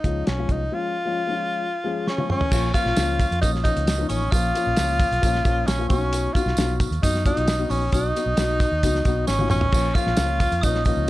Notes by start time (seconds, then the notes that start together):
Already playing: D#4
0.04 C#2 F3 G#3 C#4 F4, kick, closed hi-hat
0.26 B1 C#4, snare, closed hi-hat
0.38 F3 G#3 C#4 F4
0.49 C2 D#4, kick, closed hi-hat
0.72 F3 G#3 C#4 F4
1.05 F3 G#3 C#4 F4
1.27 F3 G#3 C#4 D#4
1.35 F4
1.84 F3 G#3 C#4 G#4
2.07 C#4 C#6, snare
2.17 F3 G#3 C#4 F4, high tom
2.30 C#4 C#6, mid tom
2.41 floor tom
2.51 A#1 F3 A#3 C#4 F4, kick, crash, tambourine
2.74 F3 A#3 C#4 F4 F6, kick, closed hi-hat, tambourine
2.85 A#1, snare
2.96 C#2 F3 A#3 C#4 F4, snare, closed hi-hat, tambourine
3.20 kick, closed hi-hat, tambourine
3.31 F2, closed hi-hat
3.41 A#1 F3 A#3 C#4 D#4 F4 D#6, kick, closed hi-hat, tambourine
3.55 snare
3.64 F3 A#3 C#4 D#4 F4 D#6, kick, closed hi-hat, tambourine
3.76 C#2, closed hi-hat
3.87 snare, closed hi-hat, tambourine
3.98 F3 A#3 C#4 D#4
4.09 A1 C#4 C#6, closed hi-hat, tambourine
4.31 A#1 F3 A#3 C#4 F4 F6, kick, closed hi-hat, tambourine
4.54 F3 A#3 C#4 F4, closed hi-hat, tambourine
4.67 A#1
4.77 C#2 F3 A#3 C#4 F4, snare, closed hi-hat, tambourine
5.00 kick, closed hi-hat, tambourine
5.11 B1, closed hi-hat
5.22 A#1 F3 A#3 C#4 F4, kick, closed hi-hat, tambourine
5.35 snare
5.45 A#1 F3 A#3 C#4 F4, kick, closed hi-hat, tambourine
5.66 A#1 C#4 C#6, snare, closed hi-hat, tambourine
5.78 F3 A#3 C#4 F4
5.89 B1 F#3 B3 C#4 F#4 C#6, kick, closed hi-hat, tambourine
5.97 D#4
6.13 closed hi-hat, tambourine
6.33 F#3 B3 D#4 F4 F#4 F6, kick, closed hi-hat, tambourine
6.46 B1, snare
6.57 B1 F#3 B3 D#4 F#4, snare, closed hi-hat, tambourine
6.80 kick, closed hi-hat, tambourine
6.91 D#2, closed hi-hat
7.02 F#2 F#3 B3 D#4 F#4 D#6, kick, closed hi-hat, tambourine
7.15 snare
7.25 F#3 B3 D#4 F4 D#6, kick, closed hi-hat, tambourine
7.37 B1, closed hi-hat
7.48 snare, closed hi-hat, tambourine
7.59 F#3 B3 D#4 F#4
7.70 A#1 C#4 C#6, open hi-hat, tambourine
7.92 B1 F#3 B3 D#4 F#4 D#6, kick, closed hi-hat, tambourine
8.15 F#3 B3 D#4 F#4, closed hi-hat, tambourine
8.26 B1
8.37 B1 F#3 B3 D#4 F#4, snare, closed hi-hat, tambourine
8.60 kick, closed hi-hat, tambourine
8.72 D#2
8.83 C#2 F#3 B3 D#4 F#4, kick, closed hi-hat, tambourine
8.95 snare
9.05 B1 F#3 B3 D#4 F#4, kick, closed hi-hat, tambourine
9.27 G#1 C#4 C#6, snare, tambourine
9.39 F#3 B3 D#4 F4, high tom
9.49 A1 C#4 C#6, mid tom, tambourine
9.61 floor tom
9.72 A#1 F3 A#3 C#4 F4, kick, crash, tambourine
9.94 F3 A#3 C#4 F4 F6, kick, closed hi-hat, tambourine
10.07 A#1, snare
10.17 C#2 F3 A#3 C#4 F4, snare, closed hi-hat, tambourine
10.40 kick, closed hi-hat, tambourine
10.52 F2, closed hi-hat
10.61 A#1 F3 A#3 C#4 D#4 F4 D#6, kick, closed hi-hat, tambourine
10.75 snare
10.84 F3 A#3 C#4 D#4 F4 D#6, kick, closed hi-hat, tambourine
10.97 C#2